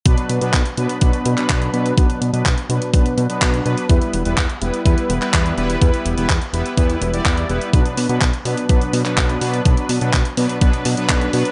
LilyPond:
<<
  \new Staff \with { instrumentName = "Analog polysynth" } { \time 4/4 \key b \minor \tempo 4 = 125 <b, fis b d' b'>8. <b, fis b d' b'>16 r8 <b, fis b d' b'>8 <b, fis b d' b'>8. <b, fis b d' b'>8. <b, fis b d' b'>8 | <b, fis b d' b'>8. <b, fis b d' b'>16 r8 <b, fis b d' b'>8 <b, fis b d' b'>8. <b, fis b d' b'>8. <fis b d' b'>8 | <g b e' b'>8. <g b e' b'>16 r8 <g b e' b'>8 <g b e' b'>8. <g b e' b'>8. <g b e' b'>8 | <g b e' b'>8. <g b e' b'>16 r8 <g b e' b'>8 <g b e' b'>8. <g b e' d''>8. <g b e' b'>8 |
<b, fis b d' b'>8. <b, fis b d' b'>16 r8 <b, fis b d' b'>8 <b, fis b d' b'>8. <b, fis b d' b'>8. <b, fis b d' b'>8 | <b, fis b d' b'>8. <b, fis b d' b'>16 r8 <b, fis b d' b'>8 <b, fis b d' b'>8. <b, fis b d' b'>8. <fis b d' b'>8 | }
  \new Staff \with { instrumentName = "Analog synth bass" } { \clef bass \time 4/4 \key b \minor b,,16 r16 b,16 b,16 b,,16 r16 b,16 r16 b,,16 r16 b,16 r16 b,,8 b,8 | b,,16 r16 b,16 b,16 b,,16 r16 b,16 r16 b,,16 r16 b,16 r16 b,,8 b,16 r16 | e,16 r16 e,,16 e,,16 e,16 r16 e,,16 r16 e,16 r16 e,,16 r16 e,8 e,,8 | e,16 r16 e,,16 e,,16 e,16 r16 e,,16 r16 e,8 e,,8 e,8 e,,16 r16 |
b,,16 r16 b,16 b,16 b,,16 r16 b,16 r16 b,,16 r16 b,16 r16 b,,8 b,8 | b,,16 r16 b,16 b,16 b,,16 r16 b,16 r16 b,,16 r16 b,16 r16 b,,8 b,16 r16 | }
  \new DrumStaff \with { instrumentName = "Drums" } \drummode { \time 4/4 <hh bd>16 hh16 hh16 hh16 <hc hh bd>16 hh16 hh16 hh16 <hh bd>16 hh16 hh16 <hc hh>16 <hc hh bd>16 hh16 hh16 hh16 | <hh bd>16 hh16 hh16 hh16 <hc hh bd>16 hh16 hh16 hh16 <hh bd>16 hh16 hh16 hh16 <hc hh bd>16 hh16 hh16 hh16 | <hh bd>16 hh16 hh16 hh16 <hc hh bd>16 hh16 hh16 hh16 <hh bd>16 hh16 hh16 <hc hh>16 <hc hh bd>16 hh16 hh16 hh16 | <hh bd>16 hh16 hh16 hh16 <hc hh bd>16 hh16 hh16 hh16 <hh bd>16 hh16 hh16 hh16 <hc hh bd>16 hh16 hh16 hh16 |
<hh bd>16 hh16 hho16 hh16 <hc hh bd>16 hh16 hho16 hh16 <hh bd>16 hh16 hho16 <hc hh>16 <hc hh bd>16 hh16 hho16 hh16 | <hh bd>16 hh16 hho16 hh16 <hc hh bd>16 hh16 hho16 hh16 <hh bd>16 hh16 hho16 hh16 <hc hh bd>16 hh16 hho16 hh16 | }
>>